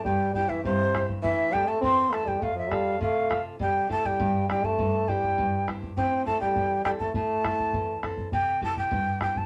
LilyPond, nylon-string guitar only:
\new Staff \with { instrumentName = "Nylon-string guitar" } { \time 2/4 \key c \major \tempo 4 = 102 <g, c' e' g'>8 <c' e' g'>8 g,8 <c' e' g'>8 | a,8 <c' e' a'>8 e,8 <c' e' a'>8 | f,8 <c' f' a'>8 c8 <c' f' a'>8 | c8 <c' e' g'>8 g,8 <c' e' g'>8 |
g,8 <c' e' g'>8 g,8 <c' e' g'>8 | a,8 <c' e' a'>8 e,8 <c' e' a'>8 | a,8 <c' e' a'>8 e,8 <c' e' a'>8 | c8 <c' e' g'>8 g,8 <c' e' g'>8 | }